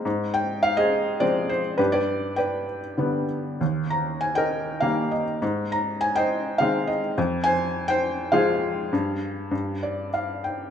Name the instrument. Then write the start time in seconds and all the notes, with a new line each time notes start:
felt piano
0.05 G#2
0.34 G5
0.63 F5
0.77 G#4 C5 D#5
1.20 F3 G#3 C4 D5
1.49 C5
1.78 G2 D4 G4 B4
1.92 G4 B4 D5
2.36 B4 D5 G5
2.98 D3 G3 B3
3.61 D#2
3.90 A#5
4.21 G#5
4.35 A#4 D#5 G5
4.80 D#3 G3 A#3 F5
5.11 D#5
5.42 G#2
5.72 A#5
6.01 G#5
6.15 C5 D#5 G5
6.58 D#3 G#3 C4 F5
6.87 D#5
7.18 F2
7.44 C5 G#5
7.88 C5 G5
8.32 F3 G#3 F4 G#4 C5 F5
8.93 G2
9.51 G2
9.83 D5
10.14 F5
10.44 G5